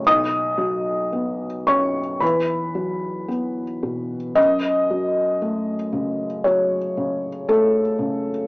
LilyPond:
<<
  \new Staff \with { instrumentName = "Felt piano" } { \time 4/4 \key fis \dorian \tempo 4 = 57 <dis'' dis'''>4. <cis'' cis'''>8 <b' b''>4 r4 | dis''2 cis''4 a'4 | }
  \new Staff \with { instrumentName = "Felt piano" } { \clef bass \time 4/4 \key fis \dorian b,,8 fis8 b8 fis,8 e,8 fis8 b8 b,8 | fis,8 fis8 a8 cis8 fis8 cis8 a8 cis8 | }
>>